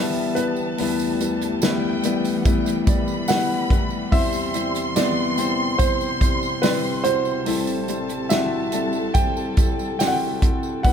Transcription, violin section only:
0.00 1.62 A5 medium
1.62 2.39 G5 loud
2.38 2.45 F#5 medium
2.45 2.87 G5 medium
2.87 4.08 B5 loud
4.12 7.46 C6 loud
7.46 10.42 A5 medium
10.85 10.93 B5 loud

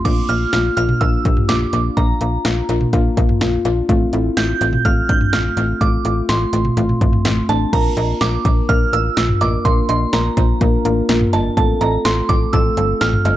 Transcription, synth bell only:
0.05 0.30 D6 loud
0.29 0.74 F6 loud
0.77 1.02 F6 loud
1.01 1.50 E6 loud
1.49 1.98 D6 medium
1.97 2.89 A#5 medium
4.37 4.86 G6 loud
4.85 5.10 F6 loud
5.09 5.31 G6 loud
5.33 5.82 F6 loud
5.81 6.30 D6 medium
6.29 7.45 C6 medium
7.49 7.74 A5 medium
7.73 8.22 A#5 loud
8.21 8.66 D6 loud
8.69 8.94 F6 loud
8.93 9.43 E6 loud
9.41 9.66 D6 loud
9.65 9.88 C6 loud
9.89 10.14 C6 loud
10.13 10.81 A#5 medium
11.33 11.44 A5 medium
11.57 11.82 A5 medium
11.81 12.06 A#5 medium
12.05 12.30 C6 loud
12.29 12.40 D6 loud
12.53 13.02 E6 loud
13.01 13.37 F6 loud

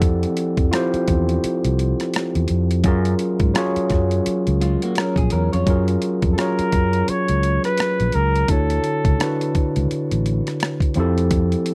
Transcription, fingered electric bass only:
0.00 0.24 F2 medium
0.59 0.70 F2 medium
0.94 muted fingered electric bass stroke soft
1.09 1.37 E2 medium
1.44 muted fingered electric bass stroke soft
1.65 1.93 C2 medium
2.36 2.47 E2 medium
2.50 2.85 F2 medium
2.85 3.13 F#2 loud
3.41 3.52 G#2 medium
3.77 muted fingered electric bass stroke soft
3.91 4.19 F#2 medium
4.27 muted fingered electric bass stroke soft
4.47 4.75 C#2 medium
5.17 5.29 A#1 medium
5.33 5.49 E2 medium
5.54 5.65 F2 medium
5.68 5.96 F#2 medium
6.23 6.35 F2 medium
6.59 muted fingered electric bass stroke soft
6.74 7.02 F#2 medium
7.09 muted fingered electric bass stroke soft
7.29 7.58 C#2 medium
8.00 8.12 A#1 medium
8.15 8.43 C#2 medium
8.50 8.78 D2 medium
9.05 9.17 C#2 medium
9.56 muted fingered electric bass stroke soft
9.77 9.88 C#2 medium
9.91 muted fingered electric bass stroke soft
10.12 10.40 A1 medium
10.97 11.54 F2 medium

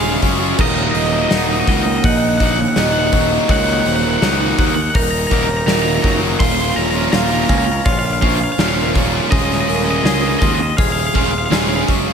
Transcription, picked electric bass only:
0.00 0.16 D#1 medium
0.22 0.53 F#1 loud
0.58 0.89 D#1 medium
0.94 1.25 D#1 loud
1.31 1.61 D#1 medium
1.67 1.98 C#2 medium
2.04 2.64 A#1 loud
2.76 3.37 D#1 loud
3.49 3.79 C#2 loud
3.86 4.16 D#1 loud
4.22 4.52 C#2 loud
4.58 4.89 D#2 loud
4.95 5.25 D#1 loud
5.31 5.61 D#1 loud
5.67 5.97 D#1 loud
6.04 6.34 F#1 loud
6.40 6.70 D#1 loud
6.76 7.07 D#1 medium
7.13 7.43 D#1 loud
7.49 7.80 C#2 loud
7.86 8.47 A#1 loud
8.58 9.19 D#1 loud
9.32 9.62 D#1 medium
9.68 9.98 D#1 medium
10.04 10.35 C#2 loud
10.41 10.72 D#2 loud
10.78 11.09 D#1 loud
11.15 11.45 D#1 medium
11.51 11.82 D#1 medium
11.89 12.13 F#1 medium

